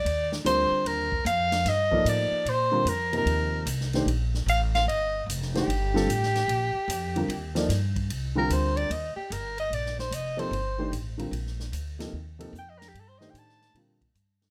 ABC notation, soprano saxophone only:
X:1
M:4/4
L:1/16
Q:"Swing" 1/4=149
K:Eblyd
V:1 name="Soprano saxophone"
d2 z2 c4 B4 f4 | e4 d4 c4 B2 B2- | B4 z8 f2 f2 | e4 z2 G8- G2- |
G12 z4 | z2 B2 c2 d2 e2 G2 B2 e2 | d2 c2 e2 c6 z4 | z12 g e B G |
A c e g a4 z8 |]